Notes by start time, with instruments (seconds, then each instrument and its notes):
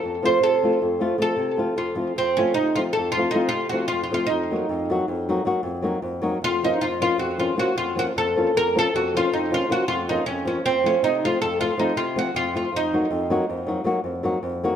Already playing: oud A4
0.03 nylon-string guitar F2
0.23 nylon-string guitar F3 A3 C4 F4, oud C5
0.40 nylon-string guitar C3, oud A4
0.63 nylon-string guitar F3 A3 C4 F4
0.82 nylon-string guitar F2
1.00 nylon-string guitar F3 A3 C4 F4
1.18 nylon-string guitar F3 A3 C4 F4, oud A4
1.36 nylon-string guitar C3
1.57 nylon-string guitar F3 A3 C4 F4
1.76 nylon-string guitar F2, oud F4
1.95 nylon-string guitar F3 A3 C4 F4
2.16 nylon-string guitar F2, oud C4
2.37 nylon-string guitar F3 A3 C4 F4, oud C#4
2.54 nylon-string guitar C3, oud D#4
2.76 nylon-string guitar F3 A3 C4 F4, oud F4
2.93 oud A4
2.97 nylon-string guitar F2
3.12 oud F4
3.17 nylon-string guitar F3 A3 C4 F4
3.31 nylon-string guitar F3 A3, oud D#4
3.35 nylon-string guitar C4 F4
3.49 nylon-string guitar C3, oud F4
3.69 nylon-string guitar F3 A3, oud F#4
3.73 nylon-string guitar C4 F4
3.88 nylon-string guitar F2, oud F4
4.04 oud F4
4.11 nylon-string guitar F3 A3 C4 F4, oud F4
4.27 oud D#4
4.31 nylon-string guitar F2
4.51 nylon-string guitar F#3 A#3 D#4 F#4
4.69 nylon-string guitar F2
4.90 nylon-string guitar F#3 A#3 D#4 F#4
5.08 nylon-string guitar F2
5.29 nylon-string guitar F#3 A#3 D#4 F#4
5.45 nylon-string guitar F#3 A#3 D#4 F#4
5.63 nylon-string guitar F2
5.82 nylon-string guitar F#3 A#3 D#4 F#4
6.02 nylon-string guitar F2
6.22 nylon-string guitar F#3 A#3 D#4 F#4
6.42 nylon-string guitar F2, oud F4
6.63 nylon-string guitar F3 A#3 C#4 F4, oud D#4
6.81 nylon-string guitar F2, oud F4
7.00 nylon-string guitar F3 A#3 C#4 F4, oud F4
7.18 nylon-string guitar F2, oud F#4
7.38 nylon-string guitar F3 A#3 C#4 F4, oud F4
7.56 nylon-string guitar F3 A#3 C#4 F4, oud F#4
7.76 nylon-string guitar F2, oud F4
7.96 nylon-string guitar F3 A#3 C#4 F4, oud F#4
8.16 nylon-string guitar F2, oud A4
8.36 nylon-string guitar F3 A#3 C#4 F4
8.55 nylon-string guitar F2, oud A#4
8.75 nylon-string guitar F3 A#3 C#4 F4
8.79 oud A4
8.94 nylon-string guitar F2, oud F#4
9.14 nylon-string guitar F3 A#3 C#4 F4, oud F4
9.32 nylon-string guitar F2, oud D#4
9.51 nylon-string guitar F3 A#3 C#4 F4, oud F4
9.69 nylon-string guitar F3 A#3 C#4 F4, oud F#4
9.88 nylon-string guitar F2, oud F4
10.09 nylon-string guitar F3 A#3 C#4 F4, oud D#4
10.26 nylon-string guitar F2, oud C#4
10.45 nylon-string guitar F3 A#3 C#4 F4, oud C#4
10.65 nylon-string guitar F2, oud C4
10.84 nylon-string guitar F3 A3 C4 F4, oud C#4
11.03 nylon-string guitar C3, oud D#4
11.24 nylon-string guitar F3 A3 C4 F4, oud F4
11.42 nylon-string guitar F2, oud A4
11.59 nylon-string guitar F3 A3 C4 F4, oud F4
11.77 nylon-string guitar F3 A3 C4 F4, oud D#4
11.96 nylon-string guitar C3, oud F4
12.16 nylon-string guitar F3 A3 C4 F4, oud F#4
12.35 nylon-string guitar F2, oud F4
12.54 nylon-string guitar F3 A3 C4 F4, oud F4
12.73 nylon-string guitar F2, oud D#4
12.93 nylon-string guitar F#3 A#3 D#4 F#4
13.11 nylon-string guitar F2
13.30 nylon-string guitar F#3 A#3 D#4 F#4
13.50 nylon-string guitar F2
13.67 nylon-string guitar F#3 A#3 D#4 F#4
13.84 nylon-string guitar F#3 A#3 D#4 F#4
14.04 nylon-string guitar F2
14.23 nylon-string guitar F#3 A#3 D#4 F#4
14.43 nylon-string guitar F2
14.64 nylon-string guitar F#3 A#3 D#4 F#4